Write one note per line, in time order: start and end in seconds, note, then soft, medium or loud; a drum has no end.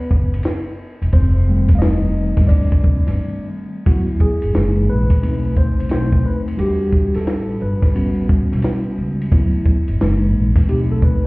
0.00 0.41 B3 medium
0.00 0.40 B4 medium
0.11 0.38 F#1 medium
0.11 kick medium
0.34 ride medium
0.43 snare loud
0.43 hi-hat pedal soft
0.43 ride medium
1.02 1.11 E1 medium
1.02 ride medium
1.12 2.34 F1 loud
1.12 1.48 C4 medium
1.12 1.78 C5 medium
1.12 kick loud
1.12 ride medium
1.48 3.82 D#3 medium
1.48 3.82 G3 soft
1.48 3.83 A3 medium
1.48 3.83 C4 medium
1.68 kick medium
1.68 ride medium
1.75 2.50 D#5 medium
1.75 1.81 F5 medium
1.81 2.46 D#4 medium
1.81 snare loud
1.81 hi-hat pedal soft
1.81 ride medium
2.37 2.47 G1 medium
2.37 kick medium
2.37 snare soft
2.37 ride medium
2.47 3.49 D4 medium
2.47 3.47 D5 medium
2.47 kick medium
2.47 ride medium
2.72 kick medium
2.84 3.01 F1 medium
2.84 kick medium
3.07 3.16 G1 medium
3.07 snare soft
3.07 ride medium
3.86 4.31 D2 loud
3.86 4.35 F#3 medium
3.86 4.35 B3 medium
3.86 4.36 E4 medium
3.86 4.02 F#4 medium
3.86 kick loud
3.86 ride medium
4.20 4.91 G#4 medium
4.20 kick medium
4.42 4.52 G1 medium
4.42 ride soft
4.54 4.89 F#1 medium
4.54 5.03 E3 medium
4.54 5.03 G#3 soft
4.54 5.04 A#3 soft
4.54 5.04 D#4 medium
4.54 snare loud
4.54 hi-hat pedal soft
4.54 ride medium
4.89 5.16 A#1 medium
4.89 5.59 B4 medium
5.10 kick medium
5.10 ride medium
5.21 5.68 B1 medium
5.21 5.87 A3 medium
5.21 5.87 C4 soft
5.21 5.87 D#4 medium
5.21 ride medium
5.57 5.91 C5 medium
5.57 kick medium
5.79 5.88 C2 medium
5.79 ride medium
5.89 6.18 B1 medium
5.89 6.55 A3 medium
5.89 6.55 C4 soft
5.89 6.55 D#4 medium
5.89 6.27 C5 medium
5.89 snare loud
5.89 hi-hat pedal soft
5.89 ride medium
6.12 kick medium
6.24 6.51 D#2 medium
6.24 6.41 B4 medium
6.48 ride medium
6.57 7.03 E2 loud
6.57 7.90 G3 medium
6.57 7.90 D4 medium
6.57 7.91 F#4 medium
6.57 7.17 G4 medium
6.57 ride medium
6.92 kick medium
7.14 7.51 A1 medium
7.14 7.63 A4 medium
7.14 snare soft
7.14 ride soft
7.27 snare loud
7.27 hi-hat pedal soft
7.27 ride medium
7.61 7.88 G1 medium
7.61 8.26 B4 medium
7.82 kick medium
7.82 snare soft
7.82 ride medium
7.95 8.40 A1 medium
7.95 9.27 G3 medium
7.95 9.27 B3 medium
7.95 9.28 C#4 medium
7.95 9.28 F#4 medium
7.95 ride medium
8.29 kick medium
8.52 8.61 B1 medium
8.52 snare soft
8.52 ride medium
8.62 snare loud
8.62 hi-hat pedal soft
8.62 ride medium
8.98 9.25 C#2 medium
9.21 ride medium
9.32 9.76 D2 loud
9.32 9.81 F#3 medium
9.32 9.81 B3 medium
9.32 9.81 E4 medium
9.32 kick loud
9.32 ride medium
9.66 kick medium
9.88 9.98 G1 medium
9.88 ride soft
10.00 10.35 F#1 medium
10.00 10.49 E3 medium
10.00 10.49 G#3 medium
10.00 10.49 A#3 soft
10.00 10.49 D#4 medium
10.00 snare loud
10.00 hi-hat pedal soft
10.00 ride medium
10.35 10.62 A#1 medium
10.56 kick medium
10.56 snare soft
10.56 ride medium
10.67 11.13 B1 medium
10.67 11.27 A3 medium
10.67 11.27 C4 medium
10.67 11.27 D#4 medium
10.67 10.79 G4 medium
10.67 ride medium
10.92 11.03 A4 medium
11.02 11.26 B4 medium
11.02 kick medium